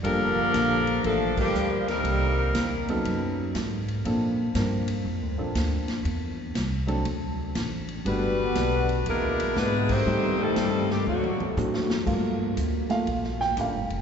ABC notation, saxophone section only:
X:1
M:4/4
L:1/8
Q:"Swing" 1/4=120
K:Gm
V:1 name="Saxophone section"
[F,DAB]4 [F,B,DA] [F,B,DG]2 [G,CEB]- | [G,CEB]3 z4 z | z8 | z8 |
[G,D^F=B]4 [^G,D=E_B]2 [G,DE=B] [A,_E=Gc]- | [A,EGc] [G,CEA]2 [E,A,CG] [D,A,C^F]2 z2 | z8 |]